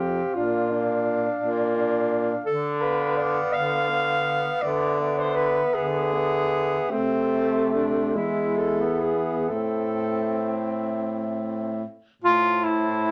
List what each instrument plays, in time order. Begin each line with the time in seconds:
Already playing: baritone saxophone F2, tenor saxophone C4, alto saxophone G4, clarinet F5
0.34 baritone saxophone A#2, tenor saxophone D4, alto saxophone F4, clarinet F5
0.70 tenor saxophone D4, clarinet F5
1.39 baritone saxophone A#2
1.76 tenor saxophone D4, clarinet F5
2.46 baritone saxophone D3, alto saxophone A4
2.80 tenor saxophone B3, alto saxophone B4, clarinet F5
3.17 alto saxophone D5
3.53 baritone saxophone D3, alto saxophone F5
3.89 tenor saxophone B3, clarinet F5
4.61 baritone saxophone D3, tenor saxophone B3, alto saxophone D5, clarinet E5
5.00 tenor saxophone B3, clarinet E5
5.19 alto saxophone C5
5.36 alto saxophone B4
5.74 baritone saxophone D3, alto saxophone G#4
6.13 tenor saxophone B3, clarinet E5
6.90 baritone saxophone C3, tenor saxophone A3, alto saxophone C4, clarinet E5
7.74 alto saxophone D4
8.15 baritone saxophone E2, tenor saxophone G#3, alto saxophone E4, clarinet E5
8.57 alto saxophone A4
8.80 tenor saxophone B3
9.02 alto saxophone G#4
9.48 baritone saxophone A2, tenor saxophone C4, alto saxophone A4, clarinet E5
12.22 baritone saxophone A2, tenor saxophone F4, alto saxophone C5, clarinet A5
12.64 tenor saxophone E4